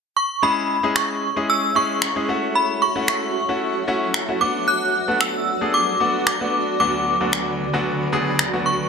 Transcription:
0.17 C#6
0.42 G#3 C#4 E4 G#4 C#5 E5 B5 C#6
0.83 G#3 C#4 E4 G#4
0.96 C#6, finger snap
1.36 G#3 C#4 E4 G#4
1.50 E6
1.75 G#3 C#4 E4 G#4 C#6
2.02 finger snap
2.16 G#3 C#4 E4 G#4
2.28 A3 C#4 E4 F#4 F#5
2.55 B5
2.82 C#6
2.95 A3 C#4 E4 F#4
3.08 C#6, finger snap
3.49 A3 C#4 E4 F#4
3.88 A3 C#4 E4 F#4
4.14 finger snap
4.28 A3 C#4 E4 F#4
4.41 A3 B3 D4 F#4 B4 D5 D6
4.68 F#6
5.08 A3 B3 D4 F#4
5.21 E6, finger snap
5.61 A3 B3 D4 G#4
5.74 D6
6.00 A3 B3 D4 F#4
6.27 D6, finger snap
6.41 A3 B3 D4 F#4
6.80 D2 D3 F#3 B3 D4 F#4 B5 D6
7.21 D2 F#3 B3 D4 F#4
7.33 finger snap
7.73 D2 F#3 B3 D4 F#4
8.12 D2 F#3 B3 D4 G#4
8.39 finger snap
8.53 D2 F#3 B3 D4 F#4
8.66 C#6

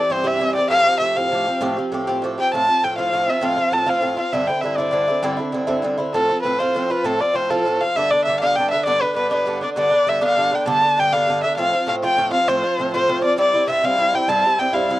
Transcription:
Already playing: G4 D5
0.10 G2 E3 C4 G4 C5
0.24 G2 E3 C4 G4 E5
0.39 G2 E3 C4 G4
0.55 E3 C4 G4 D5
0.70 A2 F3 C4 G4 F5
0.86 F3 C4 G4
1.00 A2 F3 C4 G4 E5
1.15 A2 F3 C4 G4 F5
1.32 A2 F3 C4 G4
1.45 F3 C4 G4
1.61 A2 F3 C4 G4
1.77 F3 C4 G4
1.92 A2 F3 C4 G4
2.07 A2 F3 C4 G4
2.22 A2 F3 C4 G4
2.38 F3 C4 G4 G5
2.53 A2 F3 C4 F4 A5
2.68 F3 C4 F4
2.83 A2 F3 C4 F4 G5
2.98 A2 F3 C4 F4 F5
3.12 A2 F3 C4 F4
3.28 F3 C4 F4 E5
3.41 A2 F3 C4 F4 F5
3.56 F3 C4 F4
3.72 A2 F3 C4 F4 A5
3.86 A2 F3 C4 F4 F5
4.01 A2 F3 C4 F4
4.17 F3 C4 F4 F5
4.32 G2 D3 C4 E4 E5
4.47 D3 C4 E4 G5
4.61 G2 D3 C4 E5
4.65 E4
4.76 G2 D3 C4 E4 D5
4.91 G2 D3 C4 E4
5.08 D3 C4 E4
5.23 G2 D3 C4 E4
5.37 D3 C4 E4
5.52 G2 D3 C4 E4
5.67 G2 D3 C4 E4
5.82 G2 D3 C4 E4
5.98 D3 C4 E4
6.14 A2 F3 C4 F4 A4
6.29 F3 C4 F4
6.43 A2 F3 C4 B4
6.47 F4
6.58 A2 F3 C4 F4 C5
6.74 A2 F3 C4 F4
6.90 F3 C4 F4 B4
7.04 A2 F3 C4 F4 A4
7.20 F3 C4 F4 D5
7.33 A2 F3 C4 F4 C5
7.50 A2 F3 C4 F4 A4
7.65 A2 F3 C4 F4
7.81 F3 C4 F4 F5
7.96 G2 D3 B3 D4 E5
8.11 D3 B3 D4 D5
8.25 G2 D3 B3 E5
8.29 D4
8.40 G2 D3 B3 D4 F5
8.56 G2 D3 B3 D4 G5
8.71 D3 B3 D4 E5
8.86 G2 D3 B3 D4 D5
9.01 D3 B3 D4 B4
9.15 G2 D3 B3 D4 B4
9.31 G2 D3 B3 D4 B4
9.46 G2 D3 B3 D4
9.61 D3 B3 D4 D5
9.76 G2 D3 B3 D4 D5
9.90 D3 B3 D4
10.07 G2 D3 B3 D4 E5
10.21 G2 D3 B3 D4 F5
10.36 G2 D3 B3 D4
10.51 D3 B3 D4 G5
10.66 G2 D3 B3 D4 A5
10.81 D3 B3 D4
10.98 G2 D3 B3 D4 G5
11.13 G2 D3 B3 D4 F5
11.27 G2 D3 B3 D4
11.43 D3 B3 D4 E5
11.57 A2 F3 C4 F4 F5
11.73 F3 C4 F4
11.87 A2 F3 C4 F4 F5
12.03 A2 F3 C4 F4 G5
12.17 A2 F3 C4 F4
12.31 F3 C4 F4 F5
12.48 A2 F3 C4 F4 C5
12.64 F3 C4 F4
12.78 A2 F3 C4 F4
12.94 A2 F3 C4 F4 C5
13.08 A2 F3 C4 F4
13.22 F3 C4 F4 D5
13.37 G2 G3 C4 E4 D5
13.53 G3 C4 E4
13.68 G2 G3 C4 E4 E5
13.83 G2 G3 C4 E4 F5
13.97 G2 G3 C4 E4
14.13 G3 C4 E4 G5
14.28 G2 G3 C4 E4 A5
14.43 G3 C4 E4
14.58 G2 G3 C4 E4 G5
14.73 G2 G3 C4 E4 F5
14.89 G2 G3 C4 E4

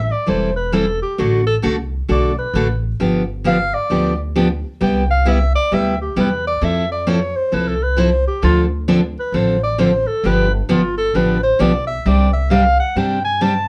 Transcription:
Already playing: A1 E5
0.11 D5
0.26 E1 E3 G3 C4 E4 A4 C5
0.56 B4
0.72 E3 G3 C4 E4 A4
1.02 G4
1.18 A1 D3 A3 D4 F#4 A4
1.47 A4
1.62 C2 D3 A3 D4 F#4 A4
2.09 B1 D3 A3 D4 F#4 A4 D5
2.39 B4
2.54 A1 D3 A3 D4 F#4 A4
3.00 G1 D3 F3 B3 D4 G4
3.44 D3 F3 B3 D4 G4 F5
3.74 D5
3.90 D2 D3 F3 B3 D4 G4
4.36 D3 F3 B3 D4 G4
4.81 C2 C3 G3 B3 E4 G4 G5
5.11 F5
5.25 C3 G3 B3 E4 G4 E5
5.55 D5
5.71 D2 C3 G3 B3 E4 G4 E5
6.01 G4
6.16 E2 C3 G3 B3 E4 G4 B4
6.47 D5
6.62 F2 F3 C4 E4 A4 E5
6.92 D5
7.07 F3 C4 E4 A4 C#5
7.36 C5
7.52 C2 F3 C4 E4 A4 B4
7.68 A4
7.83 B4
7.97 F3 C4 E4 A4 C5
8.27 G4
8.42 D2 D3 F3 C4 D4 F4 A4
8.88 D3 F3 C4 D4 A4
9.19 B4
9.32 A1 D3 F3 C4 D4 A4 C5
9.63 D5
9.78 D3 F3 C4 D4 A4 C5
10.07 A4
10.24 G1 D3 F3 B3 D4 G4 B4
10.54 D4
10.69 G1 D3 F3 B3 D4 F4 G4
10.98 A4
11.14 A1 D3 F3 B3 D4 G4 B4
11.43 C5
11.59 B1 D3 F3 B3 D4 G4 D5
11.87 E5
12.06 C2 C3 G3 C4 D4 G4 D5
12.33 E5
12.50 C3 G3 C4 D4 G4 F5
12.80 F#5
12.96 G2 C3 G3 C4 D4 G4 G5
13.25 G#5
13.41 C3 G3 C4 D4 G4 A5

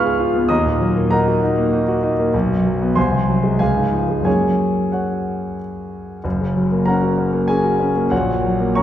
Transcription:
Already playing: C#2 G#2 G#3 B3 F4 G#4 B4 F5 G#5 C#6 F6 G#6
0.05 G#4
0.20 F4
0.35 B3
0.49 D#2 D#5 A#5 D#6
0.66 A#2
0.81 F#3
0.96 A#3
1.11 D#4 A#4 F#5 A#5
1.28 F#4
1.42 D#4
1.58 A#3
1.73 D#4
1.88 F#4
2.03 D#4
2.19 A#3
2.34 B1
2.50 F#2
2.65 F#3
2.82 B3
2.96 C2 C5 G#5 C6
3.12 C3
3.28 F#3
3.43 G#3
3.59 C#2 G#4 F5 G#5
3.76 G#2
3.92 F3
4.08 G#3
4.21 F#2 F#3 A#3 C#4
4.25 G#4 C#5 G#5
4.92 F#4 C#5 F#5
6.24 F#1 F#2
6.41 C#3
6.56 F#3
6.72 A#3
6.86 C#4 A#4 F#5 A#5
7.03 F#4
7.18 C#4
7.33 A#3
7.48 C#4 G#4 G#5
7.64 F#4
7.80 C#4
7.96 A#3
8.10 A#1 F#4 C#5 F#5
8.27 A#2
8.43 F#3
8.61 A#3
8.75 C#4 C#5 A#5 C#6

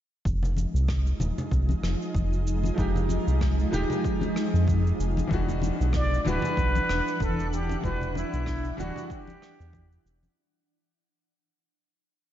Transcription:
0.25 F1 F3 G#3 D#4, kick, cabasa
0.43 low conga, cabasa
0.57 high conga, cabasa
0.74 C2, cabasa
0.88 kick, cross-stick, cabasa
1.07 cabasa
1.20 D#1, high conga, low conga, cabasa
1.38 low conga, cabasa
1.51 C2, kick, cabasa
1.69 high conga, cabasa
1.83 F1, cross-stick, cabasa
2.02 cabasa
2.15 F1, kick, high conga, cabasa
2.33 cabasa
2.47 cabasa
2.63 high conga, cabasa
2.74 F1 F3 G#3, kick
2.79 D#4 G4, cabasa
2.96 low conga, cabasa
3.09 high conga, cabasa
3.27 C2, cabasa
3.41 kick, cross-stick, cabasa
3.60 cabasa
3.71 D#1 F3 G#3 D#4 G4, high conga, low conga, cabasa
3.90 low conga, cabasa
4.04 kick, cabasa
4.21 high conga, cabasa
4.36 cross-stick, cabasa
4.54 F2, cabasa
4.67 kick, high conga, cabasa
4.87 cabasa
5.00 F1, cabasa
5.17 high conga, cabasa
5.27 E1 E3 G3 D4 F#5, kick
5.32 D4 F#4, cabasa
5.48 low conga, cabasa
5.62 high conga, cabasa
5.81 B1, cabasa
5.93 D5, kick, cross-stick, cabasa
6.14 cabasa
6.25 D1 E3 G3 D4 F#4 B4, high conga, low conga, cabasa
6.42 low conga, cabasa
6.57 B1, kick, cabasa
6.75 high conga, cabasa
6.89 E1, cross-stick, cabasa
7.08 cabasa
7.20 E1 A4, kick, high conga, cabasa
7.39 cabasa
7.53 G4, cabasa
7.69 high conga, cabasa
7.81 E1 E3 G3 D4 B4, kick
7.85 F#4, cabasa
8.02 low conga, cabasa
8.15 E4, high conga, cabasa
8.33 B1, cabasa
8.46 kick, cross-stick, cabasa
8.65 cabasa
8.77 D1 E3 G3 D4 F#4, high conga, low conga, cabasa
8.96 low conga, cabasa
9.10 G4, kick, cabasa
9.27 high conga, cabasa
9.42 cross-stick, cabasa
9.60 E2, cabasa
9.73 kick, high conga, cabasa
9.92 cabasa
10.05 E1, cabasa
10.23 high conga, cabasa

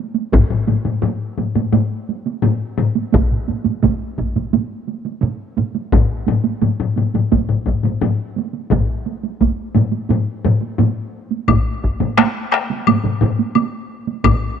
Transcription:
0.14 taiko high
0.33 taiko, taiko low-mid, taiko high
0.50 taiko low-mid
0.67 taiko low-mid, taiko high
0.85 taiko low-mid, taiko high
1.02 taiko low-mid, taiko high
1.38 taiko low-mid, taiko high
1.55 taiko low-mid, taiko high
1.73 taiko low-mid, taiko high
2.09 taiko high
2.26 taiko high
2.42 taiko low-mid, taiko high
2.78 taiko low-mid, taiko high
2.95 taiko high
3.12 taiko, taiko mid, taiko high
3.31 taiko mid
3.48 taiko mid, taiko high
3.65 taiko mid, taiko high
3.83 taiko, taiko mid, taiko high
4.18 taiko, taiko mid, taiko high
4.36 taiko mid, taiko high
4.53 taiko mid, taiko high
4.88 taiko high
5.05 taiko high
5.22 taiko mid, taiko high
5.57 taiko mid, taiko high
5.75 taiko high
5.92 taiko, taiko low-mid, taiko high
6.27 taiko low-mid, taiko high
6.44 taiko high
6.62 taiko low-mid, taiko high
6.80 taiko low-mid
6.96 taiko low-mid, taiko high
7.14 taiko low-mid, taiko high
7.32 taiko, taiko low-mid, taiko high
7.49 taiko low-mid
7.66 taiko, taiko low-mid, taiko high
7.83 taiko low-mid, taiko high
8.01 taiko low-mid, taiko high
8.36 taiko high
8.54 taiko high
8.71 taiko, taiko low-mid, taiko mid, taiko high
9.06 taiko high
9.23 taiko high
9.41 taiko, taiko high
9.75 taiko low-mid, taiko mid, taiko high
9.92 taiko high
10.09 taiko low-mid, taiko mid, taiko high
10.45 taiko low-mid, taiko mid, taiko high
10.61 taiko high
10.79 taiko low-mid, taiko mid, taiko high
11.31 taiko high
11.48 taiko, taiko low-mid, taiko mid, taiko high, high woodblock
11.84 taiko
12.00 taiko low-mid, taiko mid, taiko high
12.17 taiko rim, taiko high, high woodblock
12.52 taiko rim, high woodblock
12.70 taiko high
12.87 taiko low-mid, taiko mid, taiko high, high woodblock
13.04 taiko low-mid, taiko mid
13.21 taiko low-mid, taiko mid, taiko high
13.39 taiko high
13.55 taiko high, high woodblock
14.07 taiko high
14.24 taiko, taiko low-mid, taiko mid, taiko high, high woodblock

